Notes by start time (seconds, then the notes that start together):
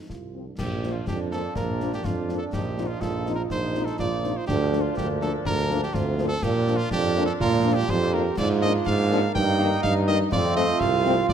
0.09 C2 F4, concert bass drum, snare
0.34 F3 C4
0.47 D4
0.58 A#1 F3 D4 G4, concert bass drum, snare, crash
0.83 F3 A#3 D4, snare
0.92 F4
1.07 F2 D4 G4, concert bass drum, snare
1.32 F3 A#3 D4 A4, snare
1.55 A#1 A#3 A#4, concert bass drum, snare
1.80 F3 A#3 D4, snare
1.93 G4, snare
2.04 F2 D4 F4, concert bass drum, snare
2.29 F3 A#3 D4, snare
2.37 A4
2.53 A#1 F3 D#4 G4, concert bass drum, snare, crash
2.78 F3 C4 D#4, snare
2.87 F4
3.01 A#1 F4 A4, concert bass drum, snare
3.26 F3 C4 D#4, snare
3.35 A#4
3.50 A#1 D#4 C5, concert bass drum, snare
3.75 F3 C4 D#4, snare
3.85 A4, snare
3.99 A#1 F4 D5, concert bass drum, snare
4.23 F3 C4 D#4, snare
4.37 C5
4.47 D2 F3 D4 G4, concert bass drum, snare, crash
4.73 F3 A#3 D4, snare
4.81 F4
4.97 D2 A#3 G4, concert bass drum, snare
5.21 F3 A#3 D4 A4, snare
5.45 D2 D4 A#4, concert bass drum, snare
5.70 F3 A#3 D4, snare
5.83 G4, snare
5.94 D2 C4 F4, concert bass drum, snare
6.18 F3 A#3 D4, snare
6.28 A4
6.43 A#2 F3 A#3 D4 G4, concert bass drum, snare, crash
6.67 F3 A#3 D4, snare
6.77 F4
6.91 F2 D4 G4, concert bass drum, snare
7.16 F3 A#3 D4, snare
7.26 A4
7.40 A#2 F4 A#4, concert bass drum, snare
7.65 F3 A#3 D4
7.74 G4
7.89 F2 G4 C5, concert bass drum, snare
8.13 F3 A#3 D4 A#4
8.37 G#2 A#3 D4 F4 D5, concert bass drum, snare, crash
8.62 F3 A#3 D4 D#5, snare
8.86 G#2 F5, concert bass drum, snare
9.11 F3 A#3 D4, snare
9.35 G2 D#4 G5, concert bass drum, snare
9.59 D#3 A#3 D#4, snare
9.72 snare
9.83 G2 D#4 F5, concert bass drum, snare
10.07 D#3 A#3 D#4 D#5, snare
10.32 F2 A3 C4 F4 D5, concert bass drum, snare, crash
10.56 F3 A3 C4 D#5, snare
10.80 C2 F5, concert bass drum, snare
11.05 F3 A3 C4, snare
11.29 A#2 D5, concert bass drum, snare